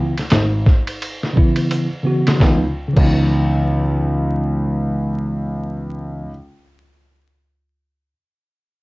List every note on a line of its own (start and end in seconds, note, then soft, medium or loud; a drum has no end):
0.00 0.12 C#3 medium
0.00 0.13 E3 medium
0.00 0.13 B3 medium
0.00 0.14 E4 medium
0.17 snare soft
0.17 ride soft
0.30 0.62 G#1 medium
0.30 snare loud
0.30 hi-hat pedal soft
0.30 ride medium
0.66 kick medium
0.66 snare soft
0.87 ride medium
1.02 ride medium
1.23 snare soft
1.33 1.86 C#3 medium
1.33 1.87 E3 medium
1.33 1.88 B3 medium
1.33 1.88 E4 medium
1.33 kick medium
1.56 ride medium
1.71 hi-hat pedal soft
1.71 ride medium
2.03 2.31 C#3 medium
2.03 2.36 E3 medium
2.03 2.40 B3 medium
2.03 2.41 F#4 medium
2.27 snare medium
2.27 ride medium
2.32 2.58 C#3 medium
2.37 2.63 C#2 medium
2.37 2.61 E3 medium
2.37 kick medium
2.37 snare medium
2.42 2.64 B3 medium
2.47 2.66 D#4 medium
2.88 6.20 C#3 medium
2.93 6.29 C#2 medium
2.93 6.25 E3 medium
2.93 kick loud
2.93 crash medium
2.98 6.30 B3 medium
3.04 6.35 D#4 medium